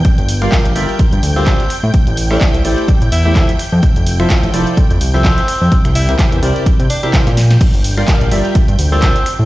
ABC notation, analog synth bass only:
X:1
M:4/4
L:1/16
Q:"Swing 16ths" 1/4=127
K:Gdor
V:1 name="Analog synth bass" clef=bass
z G,,,3 z B,,, G,,, z2 G,, D,,3 z2 A,, | z A,,,3 z C,, A,,, z2 A,, E,,3 z2 F,, | z F,,,3 z A,,, F,,, z2 F,, C,,3 z2 F,, | z C,,3 z E,, C,, z2 C, z3 B,,3 |
z G,,,3 z B,,, G,,, z2 G,, D,,3 z2 A,, |]